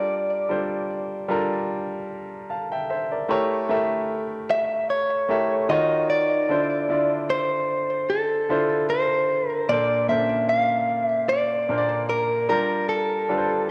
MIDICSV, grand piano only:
0, 0, Header, 1, 2, 480
1, 0, Start_track
1, 0, Key_signature, -1, "minor"
1, 0, Tempo, 800000
1, 55, Time_signature, 4, 2, 24, 8
1, 8224, End_track
2, 0, Start_track
2, 0, Title_t, "Grand piano"
2, 0, Program_c, 0, 0
2, 0, Control_c, 0, 64, 127
2, 0, Note_on_c, 0, 55, 73
2, 0, Note_on_c, 0, 62, 67
2, 0, Note_on_c, 0, 65, 68
2, 0, Note_on_c, 0, 69, 66
2, 0, Note_on_c, 0, 70, 81
2, 206, Note_off_c, 0, 55, 0
2, 208, Note_off_c, 0, 62, 0
2, 209, Note_off_c, 0, 65, 0
2, 211, Note_off_c, 0, 69, 0
2, 212, Note_off_c, 0, 70, 0
2, 293, Note_on_c, 0, 55, 70
2, 296, Note_on_c, 0, 62, 63
2, 299, Note_on_c, 0, 65, 63
2, 303, Note_on_c, 0, 69, 63
2, 305, Note_on_c, 0, 72, 78
2, 668, Note_off_c, 0, 55, 0
2, 669, Note_off_c, 0, 62, 0
2, 671, Note_off_c, 0, 65, 0
2, 673, Note_off_c, 0, 69, 0
2, 674, Note_off_c, 0, 72, 0
2, 770, Note_on_c, 0, 55, 85
2, 774, Note_on_c, 0, 62, 77
2, 777, Note_on_c, 0, 65, 81
2, 780, Note_on_c, 0, 69, 80
2, 784, Note_on_c, 0, 70, 96
2, 1498, Note_off_c, 0, 69, 0
2, 1499, Note_on_c, 0, 81, 61
2, 1500, Note_off_c, 0, 70, 0
2, 1502, Note_off_c, 0, 55, 0
2, 1502, Note_on_c, 0, 77, 54
2, 1504, Note_off_c, 0, 62, 0
2, 1506, Note_off_c, 0, 65, 0
2, 1620, Note_off_c, 0, 81, 0
2, 1622, Note_off_c, 0, 77, 0
2, 1630, Note_on_c, 0, 79, 69
2, 1634, Note_on_c, 0, 76, 60
2, 1729, Note_off_c, 0, 76, 0
2, 1732, Note_off_c, 0, 79, 0
2, 1738, Note_on_c, 0, 76, 69
2, 1742, Note_on_c, 0, 72, 57
2, 1860, Note_off_c, 0, 76, 0
2, 1862, Note_off_c, 0, 72, 0
2, 1868, Note_on_c, 0, 74, 60
2, 1873, Note_on_c, 0, 70, 52
2, 1971, Note_on_c, 0, 57, 90
2, 1973, Note_off_c, 0, 70, 0
2, 1974, Note_on_c, 0, 64, 82
2, 1978, Note_on_c, 0, 67, 81
2, 1982, Control_c, 0, 64, 0
2, 1982, Note_on_c, 0, 70, 82
2, 1984, Note_on_c, 0, 73, 98
2, 2089, Control_c, 0, 64, 127
2, 2095, Note_off_c, 0, 74, 0
2, 2160, Note_off_c, 0, 57, 0
2, 2162, Note_off_c, 0, 64, 0
2, 2163, Note_off_c, 0, 67, 0
2, 2165, Note_off_c, 0, 70, 0
2, 2166, Note_off_c, 0, 73, 0
2, 2212, Note_on_c, 0, 57, 86
2, 2216, Note_on_c, 0, 64, 77
2, 2218, Note_on_c, 0, 67, 75
2, 2222, Note_on_c, 0, 70, 73
2, 2225, Note_on_c, 0, 76, 91
2, 2943, Note_off_c, 0, 57, 0
2, 2945, Note_off_c, 0, 64, 0
2, 2946, Note_off_c, 0, 67, 0
2, 2948, Note_off_c, 0, 70, 0
2, 2949, Note_off_c, 0, 76, 0
2, 3172, Note_on_c, 0, 57, 84
2, 3177, Note_on_c, 0, 64, 72
2, 3179, Note_on_c, 0, 67, 73
2, 3183, Note_on_c, 0, 70, 72
2, 3186, Note_on_c, 0, 76, 91
2, 3414, Note_off_c, 0, 57, 0
2, 3414, Note_on_c, 0, 51, 83
2, 3416, Note_off_c, 0, 64, 0
2, 3417, Note_off_c, 0, 67, 0
2, 3417, Note_on_c, 0, 63, 75
2, 3419, Note_off_c, 0, 70, 0
2, 3420, Note_on_c, 0, 65, 80
2, 3421, Note_off_c, 0, 76, 0
2, 3424, Control_c, 0, 64, 0
2, 3425, Note_on_c, 0, 66, 73
2, 3428, Note_on_c, 0, 73, 92
2, 3529, Control_c, 0, 64, 127
2, 3807, Note_off_c, 0, 51, 0
2, 3808, Note_off_c, 0, 63, 0
2, 3809, Note_off_c, 0, 65, 0
2, 3812, Note_off_c, 0, 66, 0
2, 3813, Note_off_c, 0, 73, 0
2, 3893, Note_on_c, 0, 50, 80
2, 3896, Note_on_c, 0, 62, 68
2, 3900, Note_on_c, 0, 64, 66
2, 3903, Control_c, 0, 64, 0
2, 3903, Note_on_c, 0, 65, 68
2, 3907, Note_on_c, 0, 72, 83
2, 4011, Control_c, 0, 64, 127
2, 4081, Note_off_c, 0, 50, 0
2, 4083, Note_off_c, 0, 62, 0
2, 4084, Note_off_c, 0, 64, 0
2, 4086, Note_off_c, 0, 65, 0
2, 4088, Note_off_c, 0, 72, 0
2, 4132, Note_on_c, 0, 50, 71
2, 4136, Note_on_c, 0, 62, 64
2, 4139, Note_on_c, 0, 64, 65
2, 4143, Note_on_c, 0, 65, 62
2, 4146, Note_on_c, 0, 74, 73
2, 4863, Note_off_c, 0, 50, 0
2, 4865, Note_off_c, 0, 62, 0
2, 4867, Note_off_c, 0, 64, 0
2, 4869, Note_off_c, 0, 65, 0
2, 4870, Note_off_c, 0, 74, 0
2, 5094, Note_on_c, 0, 50, 80
2, 5098, Note_on_c, 0, 62, 75
2, 5100, Note_on_c, 0, 64, 73
2, 5104, Note_on_c, 0, 65, 72
2, 5107, Note_on_c, 0, 72, 91
2, 5647, Note_off_c, 0, 50, 0
2, 5649, Note_off_c, 0, 62, 0
2, 5649, Note_off_c, 0, 64, 0
2, 5652, Note_off_c, 0, 65, 0
2, 5653, Note_off_c, 0, 72, 0
2, 5813, Note_on_c, 0, 46, 77
2, 5816, Note_on_c, 0, 58, 72
2, 5821, Note_on_c, 0, 62, 70
2, 5822, Control_c, 0, 64, 0
2, 5824, Note_on_c, 0, 69, 69
2, 5827, Note_on_c, 0, 72, 86
2, 5940, Control_c, 0, 64, 127
2, 6001, Note_off_c, 0, 46, 0
2, 6003, Note_off_c, 0, 58, 0
2, 6005, Note_off_c, 0, 62, 0
2, 6007, Note_off_c, 0, 69, 0
2, 6008, Note_off_c, 0, 72, 0
2, 6052, Note_on_c, 0, 46, 70
2, 6057, Note_on_c, 0, 58, 62
2, 6060, Note_on_c, 0, 61, 48
2, 6062, Note_on_c, 0, 69, 66
2, 6066, Note_on_c, 0, 72, 73
2, 6099, Note_on_c, 0, 62, 67
2, 6100, Note_off_c, 0, 61, 0
2, 6783, Note_off_c, 0, 46, 0
2, 6786, Note_off_c, 0, 58, 0
2, 6788, Note_off_c, 0, 69, 0
2, 6790, Note_off_c, 0, 72, 0
2, 6807, Note_off_c, 0, 62, 0
2, 7014, Note_on_c, 0, 46, 77
2, 7017, Note_on_c, 0, 58, 74
2, 7021, Note_on_c, 0, 62, 75
2, 7024, Note_on_c, 0, 70, 73
2, 7028, Note_on_c, 0, 72, 71
2, 7064, Note_off_c, 0, 72, 0
2, 7066, Note_on_c, 0, 74, 90
2, 7487, Note_off_c, 0, 62, 0
2, 7494, Note_on_c, 0, 55, 77
2, 7495, Note_off_c, 0, 46, 0
2, 7496, Note_off_c, 0, 58, 0
2, 7496, Note_on_c, 0, 62, 73
2, 7497, Note_off_c, 0, 70, 0
2, 7499, Note_on_c, 0, 65, 70
2, 7502, Control_c, 0, 64, 0
2, 7503, Note_on_c, 0, 67, 73
2, 7506, Note_on_c, 0, 70, 91
2, 7521, Note_off_c, 0, 74, 0
2, 7601, Control_c, 0, 64, 127
2, 7886, Note_off_c, 0, 55, 0
2, 7887, Note_off_c, 0, 62, 0
2, 7889, Note_off_c, 0, 65, 0
2, 7891, Note_off_c, 0, 67, 0
2, 7892, Note_off_c, 0, 70, 0
2, 7974, Note_on_c, 0, 55, 65
2, 7977, Note_on_c, 0, 62, 65
2, 7981, Note_on_c, 0, 65, 67
2, 7985, Note_on_c, 0, 69, 65
2, 7987, Note_on_c, 0, 71, 62
2, 8023, Note_off_c, 0, 71, 0
2, 8027, Note_on_c, 0, 72, 72
2, 8224, Note_off_c, 0, 55, 0
2, 8224, Note_off_c, 0, 62, 0
2, 8224, Note_off_c, 0, 65, 0
2, 8224, Note_off_c, 0, 69, 0
2, 8224, Note_off_c, 0, 72, 0
2, 8224, End_track
0, 0, End_of_file